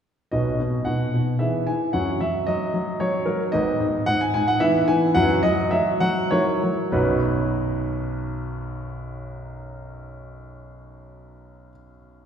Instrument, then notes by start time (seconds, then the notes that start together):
grand piano
0.32 B1 B2 F#4 B4 D#5
0.60 B2
0.85 B2 F#5
1.14 B2
1.39 E3 E4 G#4 E5
1.67 E3 G#5
1.93 F#2 F#3 C#4 F#4 F#5
2.21 F#3 E5
2.47 F#3 D#5
2.74 F#3
3.00 F#3 C#5
3.26 F#3 A#4
3.52 G#1 G#2 B3 B4 D#5
3.80 G#2
4.06 G#2 F#5
4.21 G#5
4.34 G#2 G#5
4.48 F#5
4.60 E3 B3 B4 E5
4.88 E3 G#5
5.15 F#2 F#3 E4 B4 F#5
5.43 F#3 D#5
5.71 F#3 E5
6.00 F#3 F#5
6.31 F#3 E4 A#4 C#5
6.64 F#3
6.92 B1 F#2 F#3 B3 D#4 F#4 B4